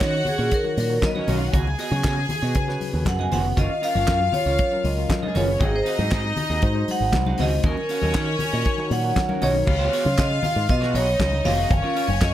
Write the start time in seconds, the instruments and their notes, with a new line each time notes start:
Already playing: string section F#4 F#5, vibraphone C#5
0.01 picked electric bass D#3, clean electric guitar C#4 F#4 A#4 C#5, kick, snare, clap, closed hi-hat
0.14 muted clean electric guitar stroke
0.25 vibraphone G#4, muted clean electric guitar stroke, open hi-hat, low conga
0.38 picked electric bass A#2, clean electric guitar C#4 F#4 A#4 C#5
0.51 tine electric piano D#3 D#4 F#4 C#5, vibraphone A#4, muted clean electric guitar stroke, kick, closed hi-hat
0.63 tine electric piano D#3 D#4 F#4 C#5, muted clean electric guitar stroke, muted conga
0.77 picked electric bass A#2, vibraphone A#4, open hi-hat, high conga
0.89 tine electric piano D#3 D#4 F#4 C#5, muted clean electric guitar stroke
1.02 string section A#3 A#4, vibraphone D#5, muted clean electric guitar stroke, kick, snare, clap, closed hi-hat, muted conga, high conga
1.11 string section B3 B4
1.15 clean electric guitar C#4 F#4 A#4 D#5, string section C#4, high conga
1.19 string section C#5
1.28 picked electric bass B1, tine electric piano D#3 D#4 F#4 C#5, clean electric guitar C#4 F#4 A#4 C#5, string section D#4 D#5, open hi-hat, low conga
1.36 string section F4 F5
1.41 muted clean electric guitar stroke
1.45 string section F#4 F#5
1.52 picked electric bass C#2, clean electric guitar B3 F#4 G#4 C#5, string section G#4 G#5, kick, closed hi-hat, muted conga, low conga
1.66 muted clean electric guitar stroke, muted conga
1.78 clean electric guitar B3 F#4 G#4 D#5, open hi-hat
1.92 picked electric bass C#3, clean electric guitar B3 F#4 G#4 C#5, high conga
2.04 picked electric bass C#3, clean electric guitar B3 F#4 G#4 C#5, kick, snare, clap, closed hi-hat
2.17 muted clean electric guitar stroke, muted conga
2.29 muted clean electric guitar stroke, open hi-hat, low conga
2.42 picked electric bass B2, clean electric guitar B3 F#4 G#4 C#5
2.55 tine electric piano C#3 C#4 F#4 B4, picked electric bass C#3, muted clean electric guitar stroke, kick, closed hi-hat, muted conga
2.68 tine electric piano C#3 C#4 F#4 B4, muted clean electric guitar stroke, snare, muted conga
2.81 open hi-hat, high conga
2.94 picked electric bass D#2, tine electric piano C#3 C#4 F#4 B4, muted clean electric guitar stroke
3.05 picked electric bass F#2, vibraphone F#5, muted clean electric guitar stroke, kick, snare, clap, closed hi-hat, muted conga, high conga
3.19 clean electric guitar B3 F#4 G#4 D#5, vibraphone G#5, muted conga, high conga
3.31 picked electric bass F1, tine electric piano C#3 C#4 F#4 B4, clean electric guitar B3 F#4 G#4 C#5, vibraphone F#5, open hi-hat, low conga
3.44 muted clean electric guitar stroke
3.57 picked electric bass F#1, clean electric guitar C#4 F4 A#4 C#5, string section F4 F5, vibraphone D#5, kick, closed hi-hat, muted conga, low conga
3.70 muted clean electric guitar stroke
3.82 clean electric guitar C#4 F4 A#4 D#5, vibraphone F5, open hi-hat
3.95 picked electric bass F#1, clean electric guitar C#4 F4 A#4 C#5, high conga
4.07 picked electric bass F#2, clean electric guitar C#4 F4 A#4 C#5, kick, snare, clap, closed hi-hat
4.20 muted clean electric guitar stroke, muted conga
4.32 vibraphone C#5, muted clean electric guitar stroke, open hi-hat, low conga
4.46 picked electric bass C#2, clean electric guitar C#4 F4 A#4 C#5
4.59 tine electric piano F#3 C#4 F4 A#4, vibraphone C#5, kick, closed hi-hat, muted conga
4.71 tine electric piano F#3 C#4 F4 A#4, muted clean electric guitar stroke, muted conga
4.84 picked electric bass C#2, vibraphone D#5, open hi-hat, high conga
4.97 tine electric piano F#3 C#4 F4 A#4, muted clean electric guitar stroke
5.09 muted clean electric guitar stroke, kick, snare, clap, closed hi-hat, high conga
5.22 clean electric guitar C#4 F4 A#4 D#5, high conga
5.27 string section G#3 G#4
5.34 picked electric bass F#1, tine electric piano F#3 C#4 F4 G#4, string section A#3 A#4, clean electric guitar C#4 F4 A#4 C#5, vibraphone C#5, open hi-hat, low conga
5.43 string section B3 B4
5.48 muted clean electric guitar stroke
5.52 string section C#4 C#5
5.59 picked electric bass G#1, clean electric guitar C4 F#4 G#4 D#5, string section D#4 D#5, vibraphone G#4, kick, closed hi-hat, low conga
5.73 vibraphone C5, muted clean electric guitar stroke
5.85 clean electric guitar C4 F#4 G#4 F5, vibraphone D#5, open hi-hat
5.99 picked electric bass G#2, clean electric guitar C4 F#4 G#4 D#5, high conga
6.11 picked electric bass G#2, clean electric guitar C4 F#4 G#4 D#5, kick, snare, clap, closed hi-hat
6.24 muted clean electric guitar stroke, muted conga
6.36 muted clean electric guitar stroke, open hi-hat, low conga
6.50 picked electric bass D#2, clean electric guitar C4 F#4 G#4 D#5
6.62 picked electric bass G#2, tine electric piano G#3 D#4 F#4 C5, muted clean electric guitar stroke, kick, closed hi-hat, muted conga
6.74 tine electric piano G#3 D#4 F#4 C5, muted clean electric guitar stroke
6.88 vibraphone F#5, open hi-hat, high conga
7.00 picked electric bass G#1, tine electric piano G#3 D#4 F#4 C5, muted clean electric guitar stroke
7.12 picked electric bass C2, muted clean electric guitar stroke, kick, snare, clap, closed hi-hat, muted conga, high conga
7.26 clean electric guitar C4 F#4 G#4 F5, muted conga, high conga
7.38 picked electric bass C#2, tine electric piano G#3 D#4 F#4 C5, clean electric guitar C4 F#4 G#4 D#5, vibraphone D#5, open hi-hat, low conga
7.52 muted clean electric guitar stroke
7.63 picked electric bass D#2, string section C#4 C#5, clean electric guitar C#4 F#4 A#4 D#5, vibraphone A#4, kick, closed hi-hat, muted conga, low conga
7.77 muted clean electric guitar stroke, muted conga
7.89 clean electric guitar C#4 F#4 A#4 F5, open hi-hat
8.02 picked electric bass D#2, clean electric guitar C#4 F#4 A#4 D#5, high conga
8.14 picked electric bass D#3, clean electric guitar C#4 F#4 A#4 D#5, kick, snare, clap, closed hi-hat
8.27 muted clean electric guitar stroke
8.39 muted clean electric guitar stroke, open hi-hat, low conga
8.52 picked electric bass A#2, clean electric guitar C#4 F#4 A#4 D#5
8.65 tine electric piano D#3 D#4 F#4 C#5, muted clean electric guitar stroke, kick, closed hi-hat
8.77 tine electric piano D#3 D#4 F#4 C#5, muted clean electric guitar stroke, muted conga
8.91 picked electric bass A#2, vibraphone F#5, open hi-hat, high conga
9.03 tine electric piano D#3 D#4 F#4 C#5, muted clean electric guitar stroke
9.15 muted clean electric guitar stroke, kick, snare, clap, closed hi-hat, muted conga, high conga
9.28 clean electric guitar C#4 F#4 A#4 F5, muted conga, high conga
9.41 picked electric bass B1, tine electric piano D#3 D#4 F#4 C#5, clean electric guitar C#4 F#4 A#4 D#5, vibraphone C#5, open hi-hat, low conga
9.54 muted clean electric guitar stroke
9.66 picked electric bass C#2, string section F4 F5, muted clean electric guitar stroke, kick, crash, muted conga, low conga
9.79 clean electric guitar B3 F#4 G#4 C#5
9.93 clean electric guitar B3 F#4 G#4 C#5, open hi-hat
10.05 picked electric bass C#3, muted clean electric guitar stroke, high conga
10.18 picked electric bass C#3, vibraphone D#5, kick, snare, clap, closed hi-hat
10.31 muted clean electric guitar stroke, muted conga
10.43 vibraphone F5, open hi-hat, low conga
10.56 picked electric bass G#2, muted clean electric guitar stroke
10.69 picked electric bass B2, vibraphone D#5, muted clean electric guitar stroke, kick, closed hi-hat, muted conga
10.81 clean electric guitar B3 F#4 G#4 C#5, snare, muted conga
10.94 picked electric bass B1, clean electric guitar B3 F#4 G#4 C#5, string section D#4 D#5, vibraphone C#5, open hi-hat
11.06 muted clean electric guitar stroke
11.19 picked electric bass C#2, muted clean electric guitar stroke, kick, snare, clap, closed hi-hat, muted conga, high conga
11.32 muted clean electric guitar stroke, high conga
11.45 picked electric bass F1, clean electric guitar B3 F#4 G#4 C#5, vibraphone F5, open hi-hat, low conga
11.57 clean electric guitar B3 F#4 G#4 C#5
11.70 picked electric bass F#1, string section C#4 C#5, muted clean electric guitar stroke, kick, closed hi-hat, muted conga, low conga
11.82 clean electric guitar C#4 F4 A#4 C#5, muted conga
11.95 clean electric guitar C#4 F4 A#4 C#5, open hi-hat
12.08 picked electric bass F#1, muted clean electric guitar stroke, high conga
12.21 picked electric bass F#2, vibraphone D#5, muted clean electric guitar stroke, kick, snare, clap, closed hi-hat